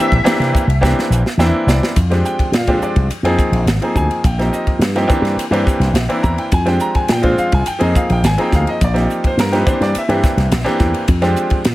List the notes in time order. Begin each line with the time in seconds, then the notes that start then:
Already playing: E3 A#3 C4 D4 G4 E5
0.12 A#1, kick, ride
0.24 E3 A#3 C4 D4 G4, muted slap bass stroke, snare, hi-hat pedal, ride
0.40 C3, snare, ride
0.54 muted slap bass stroke, kick, hi-hat pedal
0.67 C2, ride
0.81 E3 A#3 C4 D4 G4, kick, snare, hi-hat pedal
0.99 snare
1.10 A#1, hi-hat pedal
1.26 snare
1.37 E2 E3 A#3 C4 D4 E4 G5, snare, hi-hat pedal
1.52 muted slap bass stroke
1.66 C2 D5, snare, hi-hat pedal
1.83 snare
1.96 F2, kick, hi-hat pedal, ride
2.10 F3 G#3 C4 D4 G4, snare, ride
2.25 G5, hi-hat pedal
2.39 kick, ride
2.52 A#2, snare, hi-hat pedal, ride
2.57 F5
2.67 F3 G#3 C4 D4 G4, kick, ride
2.81 D5, muted slap bass stroke, hi-hat pedal
2.96 C2, kick, ride
3.10 muted slap bass stroke, hi-hat pedal, ride
3.23 F2 F3 A#3 C4 D#4 G#4, ride
3.39 kick, hi-hat pedal
3.52 A#1, ride
3.66 G#1, snare, hi-hat pedal, ride
3.82 F3 A#3 C4 D#4 G#4, ride
3.95 D2 G#5, kick, hi-hat pedal
4.11 ride
4.24 A#1 G5, kick, hi-hat pedal, ride
4.39 F3 A#3 C4 D#4 G4, snare, ride
4.53 D#5, hi-hat pedal
4.67 kick, ride
4.79 G2, snare, hi-hat pedal, ride
4.95 F3 A#3 C4 D#4 G4, snare, ride
5.07 E3 A#3 C4 D4 G4, muted slap bass stroke, kick, hi-hat pedal
5.22 G2, snare, ride
5.36 muted slap bass stroke, hi-hat pedal, ride
5.51 G2 E3 A#3 C4 D4 G4, ride
5.67 muted slap bass stroke, kick, hi-hat pedal
5.80 C2, snare, ride
5.93 A#1, snare, hi-hat pedal, ride
6.09 E3 A#3 C4 D4 E4, ride
6.23 E2 A#5, kick, hi-hat pedal
6.38 G5, ride
6.52 F2 G#5, kick, hi-hat pedal, ride
6.65 F3 G#3 C4 D4 G4 G5, snare, ride
6.80 A#5, hi-hat pedal
6.95 G#5, kick, ride
7.08 A#2 G5, snare, hi-hat pedal, ride
7.22 F3 G#3 C4 D4 F4 C5, kick, ride
7.38 F5, muted slap bass stroke, hi-hat pedal
7.52 C2 G#5, kick, ride
7.66 G5, hi-hat pedal, ride
7.79 F2 F3 A#3 C4 D#4 G#4, ride
7.83 D#5
7.95 F5, kick, hi-hat pedal
8.10 A#1 G5, ride
8.23 G#1 G#5, snare, hi-hat pedal, ride
8.38 F3 A#3 C4 D#4 G#4 G5, ride
8.52 D2 F5, kick, snare, hi-hat pedal
8.67 D#5, ride
8.81 A#1 D5, kick, hi-hat pedal, ride
8.93 F3 A#3 C4 D#4 G4, snare, ride
9.10 hi-hat pedal
9.24 C5, kick, ride
9.37 G2 A#4, snare, hi-hat pedal, ride
9.52 F3 A#3 C4 D#4 G4 B4, snare, ride
9.66 E3 A#3 C4 D4 G4 C5, muted slap bass stroke, kick, hi-hat pedal
9.81 G2 D5, snare, ride
9.95 E5, muted slap bass stroke, hi-hat pedal, ride
10.08 G2 E3 A#3 C4 D4 G4, ride
10.24 muted slap bass stroke, kick, snare, hi-hat pedal
10.37 C2, snare, ride
10.52 A#1, snare, hi-hat pedal, ride
10.64 E3 A#3 C4 D4 G4, snare, ride
10.79 E2, kick, snare, hi-hat pedal
10.94 ride
11.08 F2, kick, hi-hat pedal, ride
11.22 F3 G#3 C4 D4 G4, snare, ride
11.36 hi-hat pedal
11.50 kick, ride
11.65 A#2, snare, hi-hat pedal, ride